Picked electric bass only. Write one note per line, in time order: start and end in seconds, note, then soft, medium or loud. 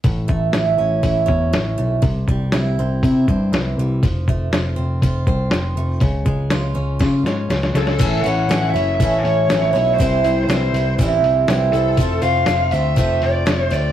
0.05 0.28 A1 medium
0.29 0.51 A1 medium
0.52 0.77 A1 medium
0.78 1.02 A1 medium
1.03 1.27 A1 medium
1.28 1.52 E2 medium
1.54 1.77 A1 medium
1.79 2.02 B1 medium
2.02 2.27 C2 medium
2.28 2.52 C2 medium
2.53 2.77 C2 medium
2.79 3.02 C2 medium
3.03 3.27 C3 medium
3.28 3.51 G2 medium
3.52 3.76 C2 medium
3.77 4.01 C2 medium
4.03 4.26 F1 medium
4.28 4.50 F1 medium
4.51 4.75 F1 medium
4.78 5.01 F1 medium
5.02 5.25 F1 medium
5.27 5.50 C2 medium
5.52 5.75 F1 medium
5.76 6.00 F1 medium
6.01 6.25 C#2 medium
6.25 6.49 C#2 medium
6.52 6.75 C#2 medium
6.75 6.99 C#2 medium
7.00 7.23 C#3 medium
7.23 7.48 G#2 medium
7.49 7.73 C#2 medium
7.74 7.98 C#2 medium
8.00 8.23 A1 medium
8.24 8.48 A1 medium
8.48 8.73 A1 medium
8.73 8.98 F#1 medium
8.99 9.23 A1 medium
9.24 9.48 A1 medium
9.49 9.73 A1 medium
9.75 9.98 B1 medium
10.00 10.23 C2 medium
10.24 10.47 C2 medium
10.48 10.72 C2 medium
10.72 10.97 C2 medium
10.98 11.22 A1 medium
11.23 11.47 C2 medium
11.48 11.72 C2 medium
11.72 11.96 C2 medium
11.98 12.21 F1 medium
12.21 12.46 F1 medium
12.46 12.71 F1 medium
12.72 12.96 D2 medium
12.97 13.21 F1 medium
13.21 13.46 F1 medium
13.47 13.70 F1 medium
13.71 13.92 D2 medium